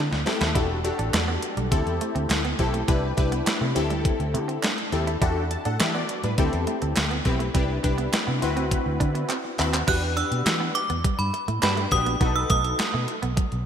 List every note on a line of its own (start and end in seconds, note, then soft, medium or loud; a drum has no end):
0.12 0.23 D2 medium
0.12 muted clean electric guitar stroke soft
0.12 snare medium
0.26 0.49 C4 medium
0.26 0.49 E4 medium
0.26 0.50 G4 medium
0.26 0.50 A4 medium
0.26 snare medium
0.26 open hi-hat medium
0.41 0.52 D#2 medium
0.41 0.49 E4 medium
0.41 snare medium
0.41 closed hi-hat soft
0.55 0.89 E1 loud
0.55 0.78 D4 medium
0.55 0.63 E4 medium
0.55 0.79 F#4 medium
0.55 0.79 G4 medium
0.55 0.79 A4 medium
0.55 kick loud
0.55 closed hi-hat medium
0.84 1.72 D4 medium
0.84 1.72 F#4 medium
0.84 1.71 G4 medium
0.84 1.71 A4 medium
0.84 muted clean electric guitar stroke soft
0.84 closed hi-hat medium
0.99 1.10 A1 medium
0.99 1.07 D4 medium
0.99 closed hi-hat medium
1.13 1.36 E2 loud
1.13 snare loud
1.13 clap medium
1.13 closed hi-hat medium
1.28 1.36 B3 medium
1.42 muted clean electric guitar stroke soft
1.42 closed hi-hat medium
1.57 1.68 B1 medium
1.57 1.66 G3 medium
1.57 closed hi-hat medium
1.71 1.83 D2 loud
1.71 2.42 C4 medium
1.71 2.42 E4 medium
1.71 2.42 G4 medium
1.71 2.42 A4 medium
1.71 muted clean electric guitar stroke soft
1.71 kick loud
1.71 closed hi-hat loud
1.86 1.98 E2 medium
1.86 closed hi-hat soft
2.01 2.10 A3 medium
2.01 closed hi-hat medium
2.15 2.27 D2 medium
2.15 2.24 C4 medium
2.15 closed hi-hat medium
2.30 2.53 D2 loud
2.30 snare loud
2.30 clap medium
2.30 closed hi-hat medium
2.45 2.53 B3 medium
2.45 closed hi-hat soft
2.59 2.82 B1 medium
2.59 2.82 C4 medium
2.59 2.83 E4 medium
2.59 2.83 G4 medium
2.59 2.83 A4 loud
2.59 muted clean electric guitar stroke soft
2.59 kick medium
2.59 closed hi-hat medium
2.74 2.82 A3 medium
2.74 closed hi-hat medium
2.88 3.11 C2 loud
2.88 2.97 C4 medium
2.88 3.11 D4 medium
2.88 3.11 E4 medium
2.88 3.12 G4 medium
2.88 3.12 B4 loud
2.88 kick loud
2.88 closed hi-hat medium
3.17 3.40 C2 loud
3.17 3.76 D4 medium
3.17 3.74 E4 medium
3.17 3.75 G4 medium
3.17 3.76 B4 medium
3.17 muted clean electric guitar stroke soft
3.17 kick medium
3.17 closed hi-hat medium
3.32 3.40 B3 medium
3.32 closed hi-hat medium
3.47 muted fingered electric bass stroke soft
3.47 snare loud
3.47 clap medium
3.47 closed hi-hat medium
3.61 3.73 C3 medium
3.61 3.70 A3 medium
3.75 4.10 D2 medium
3.75 4.69 C4 medium
3.75 4.69 E4 medium
3.75 4.69 G4 medium
3.75 4.69 A4 loud
3.75 muted clean electric guitar stroke soft
3.75 closed hi-hat medium
3.90 3.99 G3 medium
3.90 closed hi-hat medium
4.05 muted clean electric guitar stroke soft
4.05 kick loud
4.05 closed hi-hat medium
4.20 4.36 D2 loud
4.20 closed hi-hat soft
4.34 4.57 D3 loud
4.34 4.43 A3 medium
4.34 closed hi-hat medium
4.48 4.57 C4 medium
4.48 closed hi-hat medium
4.63 4.72 D4 medium
4.63 snare loud
4.63 clap medium
4.63 closed hi-hat medium
4.78 muted clean electric guitar stroke soft
4.78 closed hi-hat soft
4.92 5.15 D#2 medium
4.92 5.16 C4 medium
4.92 5.16 E4 medium
4.92 5.16 G4 medium
4.92 5.16 A4 medium
4.92 closed hi-hat medium
5.07 5.16 E4 medium
5.07 closed hi-hat medium
5.21 5.55 E2 loud
5.21 5.45 D4 medium
5.21 5.30 E4 medium
5.21 5.45 F#4 medium
5.21 5.45 G4 medium
5.21 5.45 A4 loud
5.21 kick loud
5.21 closed hi-hat medium
5.51 5.65 A5 medium
5.51 muted clean electric guitar stroke soft
5.51 closed hi-hat medium
5.65 5.77 A2 medium
5.65 5.74 D4 medium
5.65 5.80 A4 medium
5.65 5.79 F#5 medium
5.65 closed hi-hat medium
5.80 6.03 E3 medium
5.80 5.94 G4 medium
5.80 5.94 E5 medium
5.80 snare loud
5.80 clap medium
5.80 closed hi-hat loud
5.94 6.03 B3 medium
5.94 6.22 F#4 medium
5.94 6.22 D5 medium
6.09 muted clean electric guitar stroke soft
6.09 closed hi-hat medium
6.24 6.35 A2 medium
6.24 6.32 G3 medium
6.24 6.52 D4 medium
6.24 6.51 B4 medium
6.24 closed hi-hat medium
6.38 6.49 D2 medium
6.38 7.08 C4 medium
6.38 7.08 E4 medium
6.38 7.08 G4 medium
6.38 7.09 A4 loud
6.38 muted clean electric guitar stroke soft
6.38 kick loud
6.38 closed hi-hat medium
6.53 6.64 E2 medium
6.53 closed hi-hat soft
6.67 6.76 A3 medium
6.67 closed hi-hat medium
6.82 6.93 D2 medium
6.82 6.90 C4 medium
6.82 closed hi-hat medium
6.96 7.19 D2 medium
6.96 snare loud
6.96 clap medium
6.96 closed hi-hat medium
7.11 7.19 B3 medium
7.11 closed hi-hat soft
7.25 7.48 B1 medium
7.25 7.49 C4 medium
7.25 7.49 E4 medium
7.25 7.49 G4 medium
7.25 7.49 B4 medium
7.25 muted clean electric guitar stroke soft
7.25 kick medium
7.25 closed hi-hat medium
7.39 7.48 A3 medium
7.39 closed hi-hat medium
7.54 7.77 C2 loud
7.54 7.63 C4 medium
7.54 7.78 D4 medium
7.54 7.78 E4 medium
7.54 7.78 G4 medium
7.54 7.78 B4 medium
7.54 kick loud
7.54 closed hi-hat medium
7.83 8.07 C2 loud
7.83 8.42 D4 medium
7.83 8.41 E4 medium
7.83 8.42 G4 medium
7.83 8.42 B4 medium
7.83 muted clean electric guitar stroke soft
7.83 kick medium
7.83 closed hi-hat medium
7.98 8.06 B3 medium
7.98 closed hi-hat medium
8.13 muted fingered electric bass stroke soft
8.13 snare loud
8.13 clap medium
8.13 closed hi-hat medium
8.27 8.39 C3 loud
8.27 8.36 B3 medium
8.42 8.76 D2 medium
8.42 9.35 C4 medium
8.42 9.35 E4 medium
8.42 9.36 F#4 medium
8.42 9.36 B4 loud
8.42 muted clean electric guitar stroke soft
8.42 closed hi-hat medium
8.57 8.65 C4 medium
8.57 closed hi-hat medium
8.71 muted clean electric guitar stroke soft
8.71 kick loud
8.71 closed hi-hat loud
8.86 8.97 D2 loud
9.00 9.23 D3 loud
9.00 9.08 D4 medium
9.00 kick medium
9.00 closed hi-hat medium
9.15 9.23 B3 medium
9.15 closed hi-hat medium
9.29 9.37 C4 medium
9.29 clap medium
9.29 closed hi-hat medium
9.44 muted clean electric guitar stroke soft
9.58 9.82 D#2 medium
9.58 9.82 C4 medium
9.58 9.82 E4 medium
9.58 9.82 F#4 medium
9.58 9.82 B4 medium
9.58 clap medium
9.58 open hi-hat medium
9.73 9.81 C4 medium
9.73 clap medium
9.73 closed hi-hat medium
9.87 10.22 E2 loud
9.87 10.80 D4 medium
9.87 9.96 E4 medium
9.87 10.80 F#4 medium
9.87 10.81 G4 medium
9.87 10.81 B4 medium
9.87 10.15 F#6 loud
9.87 kick loud
9.87 closed hi-hat medium
9.87 crash medium
10.02 muted clean electric guitar stroke soft
10.17 10.25 D4 medium
10.17 10.77 E6 loud
10.17 closed hi-hat medium
10.31 10.43 B2 medium
10.31 closed hi-hat medium
10.46 10.69 E3 loud
10.46 snare loud
10.46 clap medium
10.46 closed hi-hat loud
10.60 10.69 B3 medium
10.75 11.20 D6 loud
10.75 muted clean electric guitar stroke soft
10.75 closed hi-hat medium
10.90 11.01 E2 medium
10.90 10.98 B3 medium
10.90 closed hi-hat medium
11.04 11.13 G3 medium
11.04 kick loud
11.04 closed hi-hat medium
11.19 11.30 G2 medium
11.19 11.59 B5 medium
11.19 closed hi-hat soft
11.34 muted clean electric guitar stroke soft
11.34 closed hi-hat medium
11.48 11.59 A2 medium
11.48 11.56 A3 medium
11.48 closed hi-hat medium
11.62 11.85 G2 loud
11.62 11.85 D4 medium
11.62 11.86 F#4 medium
11.62 11.86 G4 medium
11.62 11.86 B4 medium
11.62 11.90 B5 medium
11.62 snare loud
11.62 clap medium
11.62 closed hi-hat medium
11.77 11.85 A3 medium
11.77 closed hi-hat soft
11.91 12.14 A#1 medium
11.91 12.15 D4 medium
11.91 12.15 F#4 medium
11.91 12.15 G4 medium
11.91 12.15 B4 medium
11.91 12.37 D#6 loud
11.91 muted clean electric guitar stroke soft
11.91 kick loud
11.91 closed hi-hat medium
12.06 12.15 B3 medium
12.06 closed hi-hat medium
12.21 12.43 B1 loud
12.21 12.29 B3 medium
12.21 13.14 D#4 medium
12.21 13.14 F#4 medium
12.21 13.14 A4 medium
12.21 13.14 B4 medium
12.21 kick loud
12.21 closed hi-hat medium
12.35 12.49 E6 medium
12.35 muted clean electric guitar stroke soft
12.50 12.73 B1 loud
12.50 12.58 A3 medium
12.50 13.04 D#6 medium
12.50 kick medium
12.50 closed hi-hat medium
12.64 closed hi-hat medium
12.79 snare loud
12.79 clap medium
12.79 closed hi-hat loud
12.94 13.05 B2 medium
12.94 13.02 A3 medium
13.08 muted clean electric guitar stroke soft
13.08 closed hi-hat medium
13.22 13.34 B1 medium
13.22 13.31 B3 medium
13.22 closed hi-hat medium
13.37 13.45 F#3 medium
13.37 kick loud
13.37 closed hi-hat medium
13.52 13.63 B1 medium
13.52 closed hi-hat soft